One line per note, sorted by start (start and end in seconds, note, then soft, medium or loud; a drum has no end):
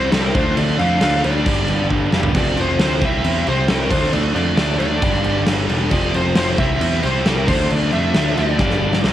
0.00 0.11 C3 medium
0.00 0.12 C3 medium
0.00 0.11 G3 loud
0.00 0.13 G3 medium
0.00 0.12 C4 loud
0.00 0.13 C4 medium
0.00 0.12 E4 loud
0.00 0.33 E4 medium
0.00 0.11 C5 medium
0.00 0.32 C5 medium
0.00 0.33 G5 medium
0.12 0.31 C2 loud
0.12 0.34 C3 loud
0.12 0.34 G3 loud
0.12 0.34 C4 loud
0.12 0.34 E4 medium
0.12 0.21 A4 medium
0.12 snare loud
0.12 crash medium
0.22 0.34 A#4 medium
0.34 0.54 D2 medium
0.34 0.56 D3 loud
0.34 1.00 F3 loud
0.34 0.57 A3 loud
0.34 0.57 D4 loud
0.34 1.45 F4 medium
0.34 0.57 C5 loud
0.34 1.45 D5 medium
0.34 1.45 A5 medium
0.34 kick loud
0.34 crash medium
0.57 0.76 D2 medium
0.57 0.78 D3 loud
0.57 0.80 A3 loud
0.57 0.80 D4 loud
0.57 0.78 D5 loud
0.57 crash medium
0.79 0.98 F2 medium
0.79 1.01 D3 medium
0.79 1.02 A3 medium
0.79 1.03 D4 loud
0.79 1.24 F5 loud
0.79 crash medium
1.01 1.21 D2 loud
1.01 1.24 D3 loud
1.01 1.45 F3 medium
1.01 1.25 A3 loud
1.01 1.25 D4 loud
1.01 snare loud
1.01 crash medium
1.24 1.43 D2 medium
1.24 1.45 D3 medium
1.24 1.46 A3 medium
1.24 1.46 D4 loud
1.24 1.87 D5 medium
1.24 crash medium
1.46 1.65 G1 medium
1.46 1.68 G2 loud
1.46 1.69 D3 loud
1.46 1.70 G3 loud
1.46 2.12 A#3 loud
1.46 2.12 D4 loud
1.46 2.34 G4 medium
1.46 2.34 D5 medium
1.46 2.34 A#5 medium
1.46 kick loud
1.46 crash medium
1.68 1.88 G1 medium
1.68 1.90 G2 medium
1.68 1.91 D3 medium
1.68 1.92 G3 medium
1.68 crash medium
1.90 2.10 G1 medium
1.90 2.12 G2 loud
1.90 2.13 D3 loud
1.90 2.13 G3 loud
1.90 kick medium
2.12 2.32 F1 medium
2.12 2.34 G2 medium
2.12 2.34 D3 medium
2.12 2.34 G3 medium
2.12 2.34 A#3 medium
2.12 2.34 D4 medium
2.12 snare medium
2.23 floor tom medium
2.33 2.54 F1 loud
2.33 2.55 F2 loud
2.33 2.56 C3 loud
2.33 2.57 F3 loud
2.33 3.01 A3 loud
2.33 3.01 C4 medium
2.33 3.01 F4 medium
2.33 3.89 C5 medium
2.33 3.01 A5 medium
2.33 kick loud
2.33 crash loud
2.38 2.59 D5 loud
2.57 2.77 F1 medium
2.57 2.78 F2 medium
2.57 2.79 C3 medium
2.57 2.79 F3 loud
2.57 2.81 C5 medium
2.57 crash medium
2.79 2.99 D2 loud
2.79 3.01 F2 loud
2.79 3.00 C3 loud
2.79 3.01 F3 loud
2.79 3.04 C5 loud
2.79 snare loud
2.79 crash medium
3.02 3.21 C2 medium
3.02 3.23 C3 medium
3.02 3.23 G3 loud
3.02 3.24 C4 loud
3.02 3.90 E4 medium
3.02 3.69 E4 medium
3.02 3.45 E5 loud
3.02 3.90 G5 medium
3.02 kick loud
3.02 crash medium
3.24 3.43 E2 loud
3.24 3.45 C3 loud
3.24 3.45 G3 loud
3.24 3.46 C4 loud
3.24 crash medium
3.46 3.66 C2 medium
3.46 3.68 C3 medium
3.46 3.68 G3 medium
3.46 3.68 C4 loud
3.46 3.69 C5 loud
3.46 crash medium
3.69 3.88 C2 loud
3.69 3.90 C3 loud
3.69 3.90 G3 loud
3.69 3.90 C4 loud
3.69 3.90 E4 medium
3.69 3.80 A4 medium
3.69 snare loud
3.69 crash medium
3.80 3.91 A#4 medium
3.90 4.10 D2 medium
3.90 4.11 D3 loud
3.90 4.57 F3 medium
3.90 4.12 A3 loud
3.90 4.12 D4 loud
3.90 5.01 F4 medium
3.90 4.14 C5 loud
3.90 5.90 D5 medium
3.90 5.01 A5 medium
3.90 kick loud
3.90 crash loud
4.12 4.32 D2 loud
4.12 4.34 D3 loud
4.12 4.34 A3 medium
4.12 4.35 D4 loud
4.12 4.19 D5 loud
4.12 crash medium
4.35 4.54 F2 medium
4.35 4.56 D3 medium
4.35 4.56 A3 medium
4.35 4.57 D4 medium
4.35 4.78 D5 loud
4.35 crash medium
4.57 4.77 D2 loud
4.57 4.79 D3 loud
4.57 5.02 F3 medium
4.57 4.79 A3 loud
4.57 4.81 D4 loud
4.57 snare loud
4.57 crash medium
4.79 4.99 D2 loud
4.79 5.01 D3 medium
4.79 5.01 A3 medium
4.79 5.02 D4 medium
4.79 5.42 D5 medium
4.79 crash medium
5.02 5.21 G1 loud
5.02 5.24 G2 loud
5.02 5.25 D3 loud
5.02 5.26 G3 loud
5.02 5.68 A#3 loud
5.02 5.67 D4 loud
5.02 5.90 G4 medium
5.02 5.91 A#5 medium
5.02 kick loud
5.02 crash medium
5.14 snare soft
5.24 5.44 G1 medium
5.24 5.46 G2 medium
5.24 5.47 D3 medium
5.24 5.47 G3 medium
5.24 crash medium
5.47 5.66 G1 loud
5.47 5.68 G2 medium
5.47 5.70 D3 loud
5.47 5.70 G3 loud
5.47 snare loud
5.47 crash medium
5.69 5.89 E1 medium
5.69 5.90 G2 medium
5.69 5.91 D3 medium
5.69 5.91 G3 medium
5.69 5.90 A#3 medium
5.69 5.90 D4 medium
5.69 crash medium
5.91 6.11 F1 medium
5.91 6.13 F2 medium
5.91 6.14 C3 loud
5.91 6.14 F3 loud
5.91 6.58 A3 medium
5.91 6.58 C4 medium
5.91 6.58 F4 medium
5.91 6.58 C5 medium
5.91 6.14 D5 loud
5.91 6.58 A5 medium
5.91 kick loud
5.91 crash medium
6.14 6.34 F1 medium
6.14 6.36 F2 loud
6.14 6.36 C3 medium
6.14 6.37 F3 medium
6.14 6.35 C5 loud
6.14 crash medium
6.36 6.55 F1 loud
6.36 6.58 F2 loud
6.36 6.58 C3 loud
6.36 6.58 F3 loud
6.36 6.57 C5 loud
6.36 snare loud
6.36 crash medium
6.58 6.78 C2 medium
6.58 6.79 C3 loud
6.58 6.80 G3 loud
6.58 6.80 C4 loud
6.58 7.47 E4 medium
6.58 7.24 E4 loud
6.58 7.47 C5 medium
6.58 7.04 E5 loud
6.58 7.47 G5 medium
6.58 kick loud
6.58 crash medium
6.80 7.00 E2 loud
6.80 7.02 C3 loud
6.80 7.03 G3 loud
6.80 7.03 C4 loud
6.80 crash medium
7.03 7.23 C2 medium
7.03 7.24 C3 medium
7.03 7.25 G3 medium
7.03 7.25 C4 medium
7.03 7.25 C5 loud
7.03 crash medium
7.25 7.45 C2 loud
7.25 7.46 C3 loud
7.25 7.47 G3 loud
7.25 7.47 C4 loud
7.25 7.48 E4 medium
7.25 7.36 A4 medium
7.25 snare loud
7.25 crash medium
7.36 7.47 A#4 medium
7.47 7.67 D2 medium
7.47 7.69 D3 loud
7.47 8.13 F3 medium
7.47 7.69 A3 loud
7.47 7.70 D4 loud
7.47 8.59 F4 medium
7.47 7.71 C5 loud
7.47 9.03 D5 medium
7.47 8.59 A5 medium
7.47 kick loud
7.47 crash loud
7.70 7.90 D2 loud
7.70 7.91 D3 medium
7.70 7.92 A3 loud
7.70 7.92 D4 loud
7.70 7.92 D5 loud
7.70 crash medium
7.92 8.12 F2 medium
7.92 8.13 D3 medium
7.92 8.13 A3 medium
7.92 8.14 D4 loud
7.92 8.34 E5 loud
7.92 crash medium
8.14 8.34 D2 medium
8.14 8.35 D3 loud
8.14 8.58 F3 medium
8.14 8.36 A3 loud
8.14 8.37 D4 loud
8.14 snare loud
8.14 crash medium
8.36 8.56 D2 medium
8.36 8.57 D3 medium
8.36 8.58 A3 medium
8.36 8.58 D4 loud
8.36 9.00 D5 medium
8.36 crash medium
8.58 8.78 G1 loud
8.58 8.80 G2 loud
8.58 8.80 D3 loud
8.58 8.81 G3 loud
8.58 9.03 A#3 loud
8.58 9.03 G4 medium
8.58 9.03 A#5 medium
8.58 kick loud
8.58 snare medium
8.62 9.04 D4 loud
8.70 snare medium
8.81 9.01 G1 medium
8.81 9.02 G2 medium
8.81 9.02 D3 medium
8.81 9.03 G3 medium
8.93 snare medium
9.03 9.13 C2 loud
9.03 9.13 C3 medium
9.03 9.13 G3 loud
9.03 9.13 C4 loud
9.03 9.13 E4 loud
9.03 9.13 G4 medium
9.03 9.13 E5 medium
9.03 9.13 C6 medium
9.03 snare loud